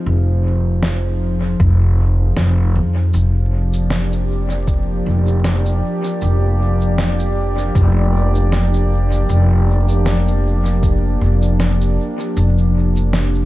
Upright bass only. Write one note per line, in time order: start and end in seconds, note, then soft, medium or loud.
0.06 1.57 F1 medium
1.60 2.36 F1 medium
2.37 2.77 F1 medium
2.75 3.10 F2 medium
3.14 5.03 F1 medium
5.06 5.80 F1 medium
6.22 7.72 F1 medium
7.75 9.26 F1 loud
9.29 11.18 F1 medium
11.21 11.95 F1 medium
12.37 13.45 F1 medium